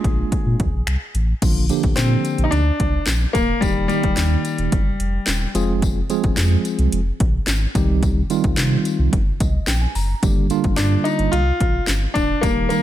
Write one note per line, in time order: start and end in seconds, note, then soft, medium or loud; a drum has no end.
0.00 0.66 G#3 medium
0.00 0.66 A#3 medium
0.00 0.66 D4 medium
0.00 0.67 F4 medium
0.00 1.10 G#4 loud
0.04 0.23 A#1 loud
0.04 kick medium
0.04 closed hi-hat medium
0.32 kick loud
0.32 closed hi-hat medium
0.46 0.55 A#2 medium
0.60 0.69 D2 medium
0.60 kick medium
0.60 closed hi-hat medium
0.73 0.83 A#1 medium
0.87 0.97 C2 medium
0.87 finger snap loud
0.87 closed hi-hat medium
1.15 1.34 A1 medium
1.15 closed hi-hat medium
1.42 1.71 A#1 loud
1.42 1.64 D3 medium
1.42 1.64 F3 medium
1.42 1.65 A#3 medium
1.42 1.65 D4 medium
1.42 1.65 F4 loud
1.42 kick loud
1.42 closed hi-hat medium
1.42 crash loud
1.42 tambourine medium
1.69 2.59 D3 loud
1.69 2.59 F3 medium
1.69 2.59 A#3 medium
1.69 2.59 D4 medium
1.69 2.59 G4 loud
1.69 closed hi-hat medium
1.69 tambourine medium
1.83 1.93 A#1 medium
1.83 kick medium
1.83 closed hi-hat medium
1.96 2.16 A#2 loud
1.96 2.46 C4 medium
1.96 snare loud
1.96 clap loud
1.96 closed hi-hat loud
1.96 tambourine medium
2.25 closed hi-hat medium
2.25 tambourine soft
2.38 2.48 A#1 medium
2.38 closed hi-hat medium
2.44 2.51 D#4 medium
2.51 2.71 D2 loud
2.51 3.03 D4 loud
2.51 closed hi-hat loud
2.51 tambourine soft
2.80 2.99 C2 medium
2.80 kick loud
2.80 closed hi-hat medium
3.06 3.26 A#1 loud
3.06 snare medium
3.06 clap loud
3.06 closed hi-hat medium
3.06 tambourine loud
3.33 3.54 D1 medium
3.33 3.60 A#3 loud
3.33 kick loud
3.33 closed hi-hat medium
3.33 tambourine medium
3.61 3.91 D#1 loud
3.61 3.85 D#3 medium
3.61 3.87 G3 loud
3.61 3.85 G3 medium
3.61 3.85 A#3 medium
3.61 3.85 D#4 medium
3.61 3.85 G4 medium
3.61 kick loud
3.61 closed hi-hat medium
3.61 tambourine medium
3.88 4.79 D#3 medium
3.88 5.50 G3 loud
3.88 4.79 G3 medium
3.88 4.79 A#3 medium
3.88 4.79 D#4 medium
3.88 4.79 G4 medium
3.88 closed hi-hat medium
3.88 tambourine medium
4.03 4.13 D#1 medium
4.03 kick medium
4.03 closed hi-hat medium
4.17 4.36 D#2 loud
4.17 snare loud
4.17 clap loud
4.17 closed hi-hat loud
4.17 tambourine medium
4.45 closed hi-hat medium
4.45 tambourine soft
4.58 4.68 D#1 medium
4.58 closed hi-hat medium
4.72 4.91 G1 loud
4.72 kick loud
4.72 closed hi-hat loud
5.00 5.19 F1 loud
5.00 closed hi-hat medium
5.26 5.46 D#1 medium
5.26 snare medium
5.26 clap loud
5.26 closed hi-hat medium
5.26 tambourine loud
5.55 6.02 F1 loud
5.55 6.00 F3 loud
5.55 6.00 G#3 medium
5.55 6.00 C4 medium
5.55 6.00 F4 medium
5.55 6.00 G#4 loud
5.55 closed hi-hat medium
5.55 tambourine medium
5.82 kick loud
5.82 closed hi-hat loud
5.82 tambourine medium
6.10 6.99 F3 loud
6.10 6.99 G#3 medium
6.10 6.99 C4 medium
6.10 6.99 F4 medium
6.10 6.99 G#4 loud
6.10 closed hi-hat medium
6.10 tambourine medium
6.24 6.33 F1 medium
6.24 kick loud
6.24 closed hi-hat medium
6.37 6.56 F2 loud
6.37 snare loud
6.37 clap loud
6.37 closed hi-hat loud
6.37 tambourine medium
6.65 closed hi-hat medium
6.65 tambourine soft
6.79 6.88 C2 medium
6.79 closed hi-hat medium
6.92 7.12 F1 loud
6.92 closed hi-hat loud
7.20 7.39 A#1 medium
7.20 kick loud
7.20 closed hi-hat medium
7.47 7.67 G#1 medium
7.47 snare medium
7.47 clap loud
7.47 closed hi-hat loud
7.47 tambourine loud
7.75 8.23 C2 loud
7.75 8.20 D#3 medium
7.75 8.20 G3 medium
7.75 8.20 C4 medium
7.75 8.20 D#4 medium
7.75 8.20 G4 loud
7.75 kick loud
7.75 closed hi-hat medium
7.75 tambourine soft
8.03 kick loud
8.03 closed hi-hat medium
8.03 tambourine medium
8.30 9.19 D#3 loud
8.30 9.20 G3 medium
8.30 9.20 C4 medium
8.30 9.20 D#4 medium
8.30 9.20 F4 loud
8.30 closed hi-hat medium
8.30 tambourine soft
8.44 8.54 C2 medium
8.44 kick loud
8.44 closed hi-hat medium
8.57 8.77 C3 loud
8.57 snare loud
8.57 clap loud
8.57 closed hi-hat loud
8.57 tambourine medium
8.85 closed hi-hat medium
8.85 tambourine soft
8.99 9.09 C2 medium
9.13 9.32 G1 loud
9.13 kick loud
9.13 closed hi-hat loud
9.40 9.59 C2 medium
9.40 9.66 D#5 medium
9.40 kick loud
9.40 closed hi-hat medium
9.40 tambourine soft
9.67 9.87 A#1 medium
9.67 9.81 G5 medium
9.67 snare medium
9.67 clap loud
9.67 closed hi-hat medium
9.67 tambourine loud
9.82 9.94 G#5 medium
9.95 10.14 F#1 medium
9.95 10.21 A#5 medium
9.95 open hi-hat medium
9.95 tambourine medium
10.23 10.51 G1 loud
10.23 10.45 D3 medium
10.23 10.45 G3 medium
10.23 10.45 A#3 medium
10.23 10.45 D4 medium
10.23 10.45 G4 loud
10.23 kick loud
10.23 closed hi-hat medium
10.23 tambourine medium
10.50 11.40 D3 medium
10.50 11.40 G3 medium
10.50 11.40 A#3 medium
10.50 11.40 D4 medium
10.50 11.40 F4 loud
10.50 closed hi-hat medium
10.50 tambourine medium
10.64 10.74 G1 medium
10.64 kick loud
10.64 closed hi-hat medium
10.77 10.97 G2 loud
10.77 11.06 D4 medium
10.77 snare medium
10.77 clap loud
10.77 closed hi-hat loud
10.77 tambourine medium
11.04 11.33 D#4 loud
11.04 closed hi-hat medium
11.04 tambourine soft
11.19 11.29 G1 medium
11.19 closed hi-hat medium
11.32 11.52 C2 loud
11.32 11.83 F4 loud
11.32 closed hi-hat loud
11.60 11.80 A#1 medium
11.60 kick loud
11.60 closed hi-hat medium
11.87 12.07 G1 medium
11.87 snare medium
11.87 clap loud
11.87 closed hi-hat medium
11.87 tambourine loud
12.14 12.34 D1 medium
12.14 12.43 D4 loud
12.14 kick loud
12.14 closed hi-hat medium
12.14 tambourine medium
12.41 12.72 D#1 loud
12.41 12.65 D#3 medium
12.41 12.65 G3 medium
12.41 12.68 A#3 loud
12.41 12.65 A#3 medium
12.41 12.66 D#4 medium
12.41 12.66 G4 medium
12.41 kick loud
12.41 closed hi-hat loud
12.41 tambourine medium
12.69 12.82 D#3 medium
12.69 12.82 G3 medium
12.69 12.82 A#3 loud
12.69 12.82 A#3 medium
12.69 12.82 D#4 medium
12.69 12.82 A#4 medium
12.69 closed hi-hat medium
12.69 tambourine medium